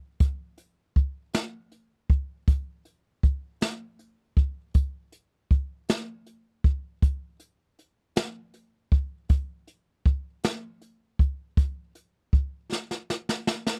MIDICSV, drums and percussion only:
0, 0, Header, 1, 2, 480
1, 0, Start_track
1, 0, Tempo, 757576
1, 129, Time_signature, 6, 3, 24, 8
1, 8741, End_track
2, 0, Start_track
2, 0, Title_t, "Drums"
2, 128, Note_on_c, 9, 42, 65
2, 129, Note_on_c, 9, 36, 87
2, 191, Note_off_c, 9, 42, 0
2, 192, Note_off_c, 9, 36, 0
2, 365, Note_on_c, 9, 42, 51
2, 429, Note_off_c, 9, 42, 0
2, 609, Note_on_c, 9, 36, 65
2, 612, Note_on_c, 9, 42, 34
2, 672, Note_off_c, 9, 36, 0
2, 675, Note_off_c, 9, 42, 0
2, 846, Note_on_c, 9, 42, 68
2, 853, Note_on_c, 9, 38, 80
2, 910, Note_off_c, 9, 42, 0
2, 916, Note_off_c, 9, 38, 0
2, 1087, Note_on_c, 9, 42, 40
2, 1151, Note_off_c, 9, 42, 0
2, 1328, Note_on_c, 9, 36, 69
2, 1330, Note_on_c, 9, 42, 36
2, 1391, Note_off_c, 9, 36, 0
2, 1393, Note_off_c, 9, 42, 0
2, 1569, Note_on_c, 9, 36, 84
2, 1569, Note_on_c, 9, 42, 65
2, 1633, Note_off_c, 9, 36, 0
2, 1633, Note_off_c, 9, 42, 0
2, 1807, Note_on_c, 9, 42, 44
2, 1870, Note_off_c, 9, 42, 0
2, 2049, Note_on_c, 9, 36, 67
2, 2052, Note_on_c, 9, 42, 36
2, 2112, Note_off_c, 9, 36, 0
2, 2115, Note_off_c, 9, 42, 0
2, 2288, Note_on_c, 9, 42, 66
2, 2294, Note_on_c, 9, 38, 77
2, 2351, Note_off_c, 9, 42, 0
2, 2358, Note_off_c, 9, 38, 0
2, 2529, Note_on_c, 9, 42, 38
2, 2592, Note_off_c, 9, 42, 0
2, 2767, Note_on_c, 9, 36, 67
2, 2770, Note_on_c, 9, 42, 37
2, 2831, Note_off_c, 9, 36, 0
2, 2833, Note_off_c, 9, 42, 0
2, 3005, Note_on_c, 9, 42, 66
2, 3009, Note_on_c, 9, 36, 81
2, 3069, Note_off_c, 9, 42, 0
2, 3072, Note_off_c, 9, 36, 0
2, 3246, Note_on_c, 9, 42, 50
2, 3309, Note_off_c, 9, 42, 0
2, 3489, Note_on_c, 9, 36, 71
2, 3493, Note_on_c, 9, 42, 34
2, 3553, Note_off_c, 9, 36, 0
2, 3556, Note_off_c, 9, 42, 0
2, 3730, Note_on_c, 9, 42, 72
2, 3736, Note_on_c, 9, 38, 80
2, 3793, Note_off_c, 9, 42, 0
2, 3799, Note_off_c, 9, 38, 0
2, 3969, Note_on_c, 9, 42, 40
2, 4033, Note_off_c, 9, 42, 0
2, 4209, Note_on_c, 9, 36, 74
2, 4210, Note_on_c, 9, 42, 36
2, 4273, Note_off_c, 9, 36, 0
2, 4274, Note_off_c, 9, 42, 0
2, 4450, Note_on_c, 9, 42, 64
2, 4451, Note_on_c, 9, 36, 89
2, 4514, Note_off_c, 9, 36, 0
2, 4514, Note_off_c, 9, 42, 0
2, 4686, Note_on_c, 9, 42, 47
2, 4750, Note_off_c, 9, 42, 0
2, 4934, Note_on_c, 9, 42, 40
2, 4998, Note_off_c, 9, 42, 0
2, 5170, Note_on_c, 9, 42, 73
2, 5176, Note_on_c, 9, 38, 85
2, 5233, Note_off_c, 9, 42, 0
2, 5240, Note_off_c, 9, 38, 0
2, 5409, Note_on_c, 9, 42, 43
2, 5473, Note_off_c, 9, 42, 0
2, 5650, Note_on_c, 9, 36, 75
2, 5652, Note_on_c, 9, 42, 37
2, 5714, Note_off_c, 9, 36, 0
2, 5716, Note_off_c, 9, 42, 0
2, 5888, Note_on_c, 9, 42, 76
2, 5891, Note_on_c, 9, 36, 81
2, 5951, Note_off_c, 9, 42, 0
2, 5955, Note_off_c, 9, 36, 0
2, 6130, Note_on_c, 9, 42, 53
2, 6193, Note_off_c, 9, 42, 0
2, 6371, Note_on_c, 9, 36, 69
2, 6374, Note_on_c, 9, 42, 38
2, 6435, Note_off_c, 9, 36, 0
2, 6438, Note_off_c, 9, 42, 0
2, 6612, Note_on_c, 9, 42, 76
2, 6619, Note_on_c, 9, 38, 89
2, 6676, Note_off_c, 9, 42, 0
2, 6682, Note_off_c, 9, 38, 0
2, 6852, Note_on_c, 9, 42, 39
2, 6916, Note_off_c, 9, 42, 0
2, 7092, Note_on_c, 9, 36, 65
2, 7096, Note_on_c, 9, 42, 40
2, 7155, Note_off_c, 9, 36, 0
2, 7160, Note_off_c, 9, 42, 0
2, 7332, Note_on_c, 9, 36, 90
2, 7334, Note_on_c, 9, 42, 70
2, 7396, Note_off_c, 9, 36, 0
2, 7397, Note_off_c, 9, 42, 0
2, 7573, Note_on_c, 9, 42, 54
2, 7636, Note_off_c, 9, 42, 0
2, 7812, Note_on_c, 9, 36, 73
2, 7817, Note_on_c, 9, 42, 38
2, 7875, Note_off_c, 9, 36, 0
2, 7880, Note_off_c, 9, 42, 0
2, 8062, Note_on_c, 9, 38, 46
2, 8125, Note_off_c, 9, 38, 0
2, 8179, Note_on_c, 9, 38, 44
2, 8243, Note_off_c, 9, 38, 0
2, 8300, Note_on_c, 9, 38, 64
2, 8363, Note_off_c, 9, 38, 0
2, 8421, Note_on_c, 9, 38, 59
2, 8484, Note_off_c, 9, 38, 0
2, 8537, Note_on_c, 9, 38, 67
2, 8600, Note_off_c, 9, 38, 0
2, 8659, Note_on_c, 9, 38, 67
2, 8722, Note_off_c, 9, 38, 0
2, 8741, End_track
0, 0, End_of_file